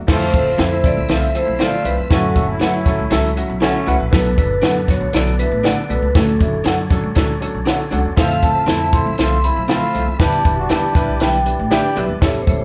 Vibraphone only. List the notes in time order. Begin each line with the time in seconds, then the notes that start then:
0.09 C5
0.35 C5
0.86 D5
1.10 E5
1.36 C5
1.61 D5
1.86 B4
2.11 A4
4.14 B4
4.39 B4
4.90 C#5
5.14 D5
5.39 B4
5.64 D5
5.90 B4
6.16 A4
8.18 F5
8.43 A5
8.94 C6
9.19 C6
9.44 B5
10.20 A5
11.22 G5
12.24 C#5
12.41 C5
12.49 C#5